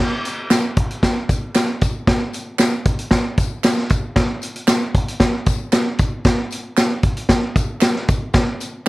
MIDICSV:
0, 0, Header, 1, 2, 480
1, 0, Start_track
1, 0, Tempo, 522648
1, 1905, Time_signature, 4, 2, 24, 8
1, 8158, End_track
2, 0, Start_track
2, 0, Title_t, "Drums"
2, 229, Note_on_c, 9, 42, 64
2, 232, Note_on_c, 9, 54, 49
2, 321, Note_off_c, 9, 42, 0
2, 324, Note_off_c, 9, 54, 0
2, 463, Note_on_c, 9, 38, 101
2, 467, Note_on_c, 9, 39, 94
2, 467, Note_on_c, 9, 54, 98
2, 468, Note_on_c, 9, 42, 75
2, 555, Note_off_c, 9, 38, 0
2, 559, Note_off_c, 9, 39, 0
2, 559, Note_off_c, 9, 54, 0
2, 560, Note_off_c, 9, 42, 0
2, 703, Note_on_c, 9, 42, 64
2, 707, Note_on_c, 9, 36, 87
2, 795, Note_off_c, 9, 42, 0
2, 799, Note_off_c, 9, 36, 0
2, 831, Note_on_c, 9, 42, 55
2, 923, Note_off_c, 9, 42, 0
2, 944, Note_on_c, 9, 38, 103
2, 945, Note_on_c, 9, 36, 77
2, 948, Note_on_c, 9, 42, 88
2, 957, Note_on_c, 9, 54, 48
2, 1036, Note_off_c, 9, 38, 0
2, 1037, Note_off_c, 9, 36, 0
2, 1039, Note_off_c, 9, 42, 0
2, 1049, Note_off_c, 9, 54, 0
2, 1184, Note_on_c, 9, 42, 69
2, 1187, Note_on_c, 9, 36, 78
2, 1201, Note_on_c, 9, 54, 58
2, 1276, Note_off_c, 9, 42, 0
2, 1279, Note_off_c, 9, 36, 0
2, 1293, Note_off_c, 9, 54, 0
2, 1420, Note_on_c, 9, 42, 95
2, 1426, Note_on_c, 9, 39, 80
2, 1426, Note_on_c, 9, 54, 78
2, 1427, Note_on_c, 9, 38, 104
2, 1512, Note_off_c, 9, 42, 0
2, 1518, Note_off_c, 9, 39, 0
2, 1518, Note_off_c, 9, 54, 0
2, 1519, Note_off_c, 9, 38, 0
2, 1664, Note_on_c, 9, 42, 70
2, 1671, Note_on_c, 9, 36, 82
2, 1678, Note_on_c, 9, 54, 51
2, 1756, Note_off_c, 9, 42, 0
2, 1763, Note_off_c, 9, 36, 0
2, 1770, Note_off_c, 9, 54, 0
2, 1905, Note_on_c, 9, 36, 100
2, 1907, Note_on_c, 9, 38, 98
2, 1907, Note_on_c, 9, 42, 80
2, 1997, Note_off_c, 9, 36, 0
2, 1999, Note_off_c, 9, 38, 0
2, 1999, Note_off_c, 9, 42, 0
2, 2144, Note_on_c, 9, 54, 46
2, 2149, Note_on_c, 9, 42, 64
2, 2235, Note_off_c, 9, 54, 0
2, 2241, Note_off_c, 9, 42, 0
2, 2378, Note_on_c, 9, 39, 91
2, 2378, Note_on_c, 9, 54, 96
2, 2381, Note_on_c, 9, 38, 88
2, 2386, Note_on_c, 9, 42, 77
2, 2470, Note_off_c, 9, 39, 0
2, 2470, Note_off_c, 9, 54, 0
2, 2473, Note_off_c, 9, 38, 0
2, 2478, Note_off_c, 9, 42, 0
2, 2621, Note_on_c, 9, 42, 66
2, 2622, Note_on_c, 9, 54, 34
2, 2624, Note_on_c, 9, 36, 87
2, 2712, Note_off_c, 9, 42, 0
2, 2713, Note_off_c, 9, 54, 0
2, 2716, Note_off_c, 9, 36, 0
2, 2743, Note_on_c, 9, 42, 60
2, 2834, Note_off_c, 9, 42, 0
2, 2854, Note_on_c, 9, 38, 98
2, 2857, Note_on_c, 9, 42, 81
2, 2859, Note_on_c, 9, 36, 76
2, 2873, Note_on_c, 9, 54, 48
2, 2946, Note_off_c, 9, 38, 0
2, 2949, Note_off_c, 9, 42, 0
2, 2951, Note_off_c, 9, 36, 0
2, 2965, Note_off_c, 9, 54, 0
2, 3099, Note_on_c, 9, 42, 64
2, 3103, Note_on_c, 9, 36, 79
2, 3122, Note_on_c, 9, 54, 58
2, 3191, Note_off_c, 9, 42, 0
2, 3194, Note_off_c, 9, 36, 0
2, 3214, Note_off_c, 9, 54, 0
2, 3340, Note_on_c, 9, 42, 96
2, 3343, Note_on_c, 9, 39, 78
2, 3343, Note_on_c, 9, 54, 83
2, 3346, Note_on_c, 9, 38, 110
2, 3432, Note_off_c, 9, 42, 0
2, 3435, Note_off_c, 9, 39, 0
2, 3435, Note_off_c, 9, 54, 0
2, 3438, Note_off_c, 9, 38, 0
2, 3466, Note_on_c, 9, 38, 32
2, 3558, Note_off_c, 9, 38, 0
2, 3577, Note_on_c, 9, 42, 70
2, 3588, Note_on_c, 9, 36, 85
2, 3591, Note_on_c, 9, 54, 54
2, 3669, Note_off_c, 9, 42, 0
2, 3679, Note_off_c, 9, 36, 0
2, 3683, Note_off_c, 9, 54, 0
2, 3819, Note_on_c, 9, 38, 92
2, 3819, Note_on_c, 9, 42, 80
2, 3823, Note_on_c, 9, 36, 99
2, 3911, Note_off_c, 9, 38, 0
2, 3911, Note_off_c, 9, 42, 0
2, 3915, Note_off_c, 9, 36, 0
2, 4057, Note_on_c, 9, 54, 50
2, 4065, Note_on_c, 9, 42, 64
2, 4149, Note_off_c, 9, 54, 0
2, 4157, Note_off_c, 9, 42, 0
2, 4184, Note_on_c, 9, 42, 51
2, 4276, Note_off_c, 9, 42, 0
2, 4295, Note_on_c, 9, 38, 100
2, 4295, Note_on_c, 9, 39, 101
2, 4295, Note_on_c, 9, 54, 101
2, 4300, Note_on_c, 9, 42, 77
2, 4387, Note_off_c, 9, 38, 0
2, 4387, Note_off_c, 9, 39, 0
2, 4387, Note_off_c, 9, 54, 0
2, 4392, Note_off_c, 9, 42, 0
2, 4540, Note_on_c, 9, 42, 74
2, 4542, Note_on_c, 9, 36, 87
2, 4631, Note_off_c, 9, 42, 0
2, 4634, Note_off_c, 9, 36, 0
2, 4667, Note_on_c, 9, 42, 54
2, 4759, Note_off_c, 9, 42, 0
2, 4774, Note_on_c, 9, 38, 105
2, 4777, Note_on_c, 9, 42, 77
2, 4778, Note_on_c, 9, 36, 80
2, 4785, Note_on_c, 9, 54, 49
2, 4866, Note_off_c, 9, 38, 0
2, 4869, Note_off_c, 9, 42, 0
2, 4870, Note_off_c, 9, 36, 0
2, 4877, Note_off_c, 9, 54, 0
2, 5016, Note_on_c, 9, 42, 63
2, 5021, Note_on_c, 9, 36, 84
2, 5032, Note_on_c, 9, 54, 56
2, 5107, Note_off_c, 9, 42, 0
2, 5112, Note_off_c, 9, 36, 0
2, 5124, Note_off_c, 9, 54, 0
2, 5255, Note_on_c, 9, 42, 89
2, 5260, Note_on_c, 9, 39, 80
2, 5260, Note_on_c, 9, 54, 79
2, 5261, Note_on_c, 9, 38, 110
2, 5347, Note_off_c, 9, 42, 0
2, 5352, Note_off_c, 9, 39, 0
2, 5352, Note_off_c, 9, 54, 0
2, 5353, Note_off_c, 9, 38, 0
2, 5496, Note_on_c, 9, 42, 72
2, 5505, Note_on_c, 9, 36, 92
2, 5505, Note_on_c, 9, 54, 55
2, 5588, Note_off_c, 9, 42, 0
2, 5597, Note_off_c, 9, 36, 0
2, 5597, Note_off_c, 9, 54, 0
2, 5736, Note_on_c, 9, 54, 32
2, 5740, Note_on_c, 9, 36, 102
2, 5741, Note_on_c, 9, 42, 81
2, 5742, Note_on_c, 9, 38, 104
2, 5828, Note_off_c, 9, 54, 0
2, 5832, Note_off_c, 9, 36, 0
2, 5833, Note_off_c, 9, 38, 0
2, 5833, Note_off_c, 9, 42, 0
2, 5976, Note_on_c, 9, 54, 45
2, 5990, Note_on_c, 9, 42, 68
2, 6068, Note_off_c, 9, 54, 0
2, 6081, Note_off_c, 9, 42, 0
2, 6219, Note_on_c, 9, 39, 96
2, 6219, Note_on_c, 9, 54, 94
2, 6223, Note_on_c, 9, 38, 92
2, 6228, Note_on_c, 9, 42, 73
2, 6311, Note_off_c, 9, 39, 0
2, 6311, Note_off_c, 9, 54, 0
2, 6315, Note_off_c, 9, 38, 0
2, 6320, Note_off_c, 9, 42, 0
2, 6456, Note_on_c, 9, 42, 65
2, 6460, Note_on_c, 9, 36, 88
2, 6547, Note_off_c, 9, 42, 0
2, 6552, Note_off_c, 9, 36, 0
2, 6582, Note_on_c, 9, 42, 58
2, 6674, Note_off_c, 9, 42, 0
2, 6693, Note_on_c, 9, 38, 101
2, 6697, Note_on_c, 9, 36, 81
2, 6697, Note_on_c, 9, 42, 85
2, 6702, Note_on_c, 9, 54, 51
2, 6785, Note_off_c, 9, 38, 0
2, 6789, Note_off_c, 9, 36, 0
2, 6789, Note_off_c, 9, 42, 0
2, 6794, Note_off_c, 9, 54, 0
2, 6941, Note_on_c, 9, 36, 86
2, 6941, Note_on_c, 9, 42, 64
2, 6949, Note_on_c, 9, 54, 52
2, 7033, Note_off_c, 9, 36, 0
2, 7033, Note_off_c, 9, 42, 0
2, 7041, Note_off_c, 9, 54, 0
2, 7174, Note_on_c, 9, 39, 84
2, 7174, Note_on_c, 9, 54, 80
2, 7175, Note_on_c, 9, 42, 95
2, 7181, Note_on_c, 9, 38, 110
2, 7266, Note_off_c, 9, 39, 0
2, 7266, Note_off_c, 9, 54, 0
2, 7267, Note_off_c, 9, 42, 0
2, 7273, Note_off_c, 9, 38, 0
2, 7307, Note_on_c, 9, 38, 33
2, 7399, Note_off_c, 9, 38, 0
2, 7423, Note_on_c, 9, 42, 70
2, 7428, Note_on_c, 9, 36, 94
2, 7428, Note_on_c, 9, 54, 58
2, 7514, Note_off_c, 9, 42, 0
2, 7519, Note_off_c, 9, 36, 0
2, 7520, Note_off_c, 9, 54, 0
2, 7655, Note_on_c, 9, 54, 34
2, 7658, Note_on_c, 9, 38, 98
2, 7658, Note_on_c, 9, 42, 75
2, 7662, Note_on_c, 9, 36, 110
2, 7746, Note_off_c, 9, 54, 0
2, 7750, Note_off_c, 9, 38, 0
2, 7750, Note_off_c, 9, 42, 0
2, 7754, Note_off_c, 9, 36, 0
2, 7901, Note_on_c, 9, 54, 47
2, 7905, Note_on_c, 9, 42, 64
2, 7993, Note_off_c, 9, 54, 0
2, 7997, Note_off_c, 9, 42, 0
2, 8158, End_track
0, 0, End_of_file